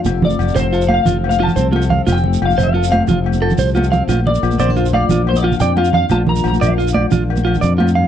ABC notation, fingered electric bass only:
X:1
M:12/8
L:1/8
Q:3/8=119
K:Bb
V:1 name="Fingered electric bass" clef=bass
F,,,2 F,,, F,,,3 F,,,3 C,,3 | F,,,2 F,,, F,,,3 F,,,3 C,,3 | B,,,2 B,,, B,,,3 B,,,3 F,,3 | B,,,2 B,,, B,,,3 B,,,3 F,,3 |]